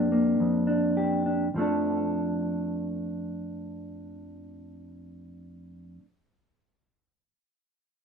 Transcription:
0.00 0.39 F2 medium
0.00 0.11 A#3 soft
0.00 0.66 D4 soft
0.00 0.96 G4 soft
0.12 1.46 A#3 soft
0.40 1.53 F2 soft
0.67 1.24 D4 soft
0.97 1.47 G4 soft
1.26 1.47 D4 soft
1.54 5.98 F2 soft
1.54 5.99 F3 soft
1.54 6.01 A3 soft
1.59 6.03 D4 soft
1.59 6.05 A4 soft

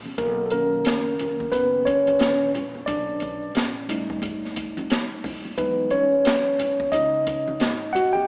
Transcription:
0.00 0.15 A#1 medium
0.00 0.14 E3 medium
0.00 0.15 A3 soft
0.00 0.15 A#3 soft
0.06 high conga soft
0.06 shaker soft
0.18 0.82 B1 loud
0.18 0.45 A#3 medium
0.18 0.44 A#4 medium
0.18 kick loud
0.18 closed hi-hat medium
0.18 shaker medium
0.39 shaker soft
0.46 0.52 A4 medium
0.50 1.49 D#3 medium
0.50 1.50 A#3 medium
0.50 1.50 C#4 medium
0.50 1.56 A#4 medium
0.50 closed hi-hat medium
0.50 shaker soft
0.73 shaker soft
0.85 1.50 F#1 medium
0.85 snare loud
0.85 closed hi-hat medium
0.85 shaker medium
1.07 shaker soft
1.19 closed hi-hat medium
1.19 low conga medium
1.19 shaker soft
1.40 kick medium
1.40 shaker soft
1.52 2.17 F#1 loud
1.52 1.85 B3 medium
1.52 1.87 B4 medium
1.52 kick medium
1.52 closed hi-hat medium
1.52 shaker medium
1.73 shaker soft
1.85 2.20 C#4 medium
1.85 2.50 C#5 medium
1.85 kick medium
1.85 closed hi-hat medium
1.85 shaker soft
2.07 closed hi-hat medium
2.07 high conga medium
2.07 shaker soft
2.19 2.84 A#1 medium
2.19 2.51 D#3 soft
2.19 2.51 A#3 soft
2.19 2.51 C#4 medium
2.19 snare loud
2.19 closed hi-hat medium
2.19 shaker medium
2.41 shaker soft
2.55 closed hi-hat medium
2.55 low conga medium
2.55 shaker soft
2.75 high conga soft
2.75 shaker soft
2.86 3.52 B1 loud
2.86 3.52 D4 medium
2.86 3.50 D5 medium
2.86 kick loud
2.86 closed hi-hat medium
2.86 shaker medium
3.08 shaker soft
3.20 kick medium
3.20 closed hi-hat medium
3.20 shaker soft
3.42 shaker soft
3.55 4.19 A1 medium
3.55 snare loud
3.55 closed hi-hat medium
3.55 shaker medium
3.76 shaker soft
3.88 5.53 G3 medium
3.88 5.54 A3 soft
3.88 5.54 D#4 medium
3.88 closed hi-hat medium
3.88 low conga medium
3.88 shaker soft
4.10 kick medium
4.10 shaker soft
4.22 4.86 G1 medium
4.22 kick medium
4.22 closed hi-hat medium
4.22 shaker medium
4.43 snare soft
4.43 shaker soft
4.56 kick medium
4.56 closed hi-hat medium
4.56 shaker soft
4.77 closed hi-hat soft
4.77 high conga medium
4.77 shaker soft
4.90 5.54 D#2 medium
4.90 snare loud
4.90 closed hi-hat medium
4.90 shaker medium
5.11 shaker soft
5.24 kick medium
5.24 open hi-hat medium
5.24 low conga medium
5.24 shaker soft
5.45 high conga soft
5.45 shaker soft
5.57 6.22 E2 loud
5.57 6.05 F#3 soft
5.57 6.06 G#3 soft
5.57 5.90 B3 medium
5.57 6.06 D#4 medium
5.57 5.92 B4 medium
5.57 kick loud
5.57 closed hi-hat medium
5.57 shaker medium
5.78 shaker soft
5.90 6.89 C#4 medium
5.90 6.95 C#5 medium
5.90 closed hi-hat medium
5.90 shaker soft
6.12 shaker soft
6.25 6.89 F#2 medium
6.25 snare loud
6.25 closed hi-hat medium
6.25 shaker medium
6.47 shaker soft
6.59 closed hi-hat medium
6.59 low conga medium
6.59 shaker soft
6.79 kick medium
6.79 shaker soft
6.92 7.56 C#2 medium
6.92 7.90 D#4 medium
6.92 7.96 D#5 loud
6.92 kick medium
6.92 closed hi-hat medium
6.92 shaker medium
7.13 shaker soft
7.26 kick medium
7.26 closed hi-hat medium
7.26 shaker soft
7.48 high conga medium
7.48 shaker soft
7.60 8.24 G#1 medium
7.60 snare loud
7.60 closed hi-hat medium
7.60 shaker medium
7.81 shaker soft
7.93 8.14 F#4 medium
7.93 8.12 F#5 loud
7.93 closed hi-hat medium
7.93 low conga medium
7.93 shaker soft
8.13 8.27 G4 medium
8.13 8.27 G5 medium
8.13 high conga soft
8.13 shaker soft

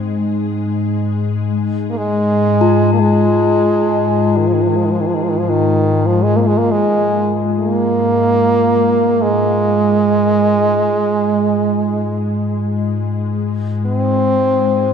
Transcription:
0.00 8.91 G#2 medium
0.00 8.92 G#3 medium
0.00 1.40 D#4 soft
1.90 1.99 A#3 soft
1.97 2.92 G#3 medium
2.61 11.15 F4 soft
2.93 3.01 A#3 medium
3.00 4.39 G#3 medium
4.37 4.48 D#3 medium
4.47 4.55 F3 medium
4.53 4.63 D#3 soft
4.62 4.70 F3 soft
4.68 4.77 D#3 medium
4.76 4.86 F3 medium
4.85 4.93 D#3 soft
4.91 5.02 F3 medium
5.00 5.08 D#3 medium
5.07 5.16 F3 medium
5.15 5.24 D#3 medium
5.23 5.31 F3 medium
5.30 5.40 D#3 soft
5.39 5.51 F3 medium
5.49 6.08 D#3 medium
6.06 6.25 F3 medium
6.23 6.38 G#3 medium
6.36 6.41 A#3 medium
6.41 6.48 A#3 soft
6.47 6.59 G#3 medium
6.58 6.73 A#3 medium
6.71 7.31 G#3 medium
7.58 9.24 A#3 medium
8.92 14.94 G#2 medium
8.92 14.94 G#3 medium
9.22 12.35 G#3 medium
13.86 14.90 C4 medium

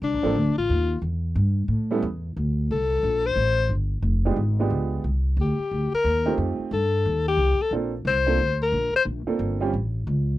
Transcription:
0.02 0.13 C2 medium
0.02 0.54 D4 medium
0.13 0.23 A#1 medium
0.23 0.34 A1 medium
0.23 0.34 F3 medium
0.23 0.34 A#3 medium
0.23 0.34 C4 medium
0.23 0.34 D4 medium
0.23 0.34 A4 medium
0.35 0.48 D2 medium
0.46 0.57 A#1 medium
0.57 0.68 A1 medium
0.57 1.00 F4 medium
0.70 1.01 D#2 medium
1.02 1.35 E2 medium
1.35 1.67 G2 medium
1.68 2.01 A2 medium
1.91 2.02 G3 medium
1.91 2.02 B3 medium
1.91 2.02 C#4 medium
1.91 2.02 E4 medium
1.91 2.02 A4 medium
2.02 2.35 E2 loud
2.37 2.69 D2 medium
2.71 3.02 C2 medium
2.71 3.28 A4 medium
3.03 3.35 A#1 medium
3.26 3.71 C5 loud
3.36 3.69 A1 medium
3.69 4.02 G1 medium
4.02 4.36 F1 medium
4.25 4.36 G#3 medium
4.25 4.36 B3 medium
4.25 4.36 D4 medium
4.25 4.36 F4 medium
4.25 4.37 G4 medium
4.36 4.69 G#1 medium
4.59 5.02 G#3 medium
4.59 5.02 B3 medium
4.59 5.02 D4 medium
4.59 5.03 F4 medium
4.59 5.03 G4 medium
4.70 5.03 C#2 medium
5.04 5.36 C2 medium
5.37 5.57 D2 medium
5.41 5.90 G4 medium
5.58 muted upright bass stroke soft
5.71 5.91 D2 medium
5.93 6.36 A#4 medium
5.93 muted upright bass stroke soft
6.04 6.37 D#2 medium
6.26 6.69 A3 medium
6.26 6.69 C4 medium
6.26 6.69 D#4 medium
6.26 6.69 F4 medium
6.26 6.69 G4 medium
6.38 6.57 F2 medium
6.59 muted upright bass stroke soft
6.71 7.04 G2 medium
6.71 7.23 A4 medium
7.05 7.37 D#2 medium
7.28 7.63 G4 medium
7.37 7.57 C2 medium
7.59 7.73 A4 medium
7.59 muted upright bass stroke soft
7.71 8.04 A#1 medium
7.71 7.91 A#3 medium
7.71 7.91 C4 medium
7.71 7.91 D4 medium
7.71 7.92 F4 medium
7.71 7.91 A4 medium
8.05 8.37 C2 medium
8.05 8.57 C5 medium
8.26 8.37 A#3 medium
8.26 8.37 C4 medium
8.26 8.37 D4 medium
8.26 8.38 F4 medium
8.26 8.38 A4 medium
8.38 8.71 D2 medium
8.62 8.92 A#4 medium
8.72 8.92 A#1 medium
8.94 9.02 C5 medium
8.94 muted upright bass stroke soft
9.05 9.25 A#1 medium
9.27 9.58 A#3 medium
9.27 9.58 C4 medium
9.27 9.58 D4 medium
9.27 9.58 F4 medium
9.27 9.58 A4 medium
9.27 muted upright bass stroke soft
9.39 9.71 G1 medium
9.60 9.71 G3 medium
9.60 9.71 C4 medium
9.60 9.71 C#4 medium
9.60 9.71 F4 medium
9.60 9.72 G4 medium
9.73 10.05 A1 medium
10.07 10.38 C#2 medium

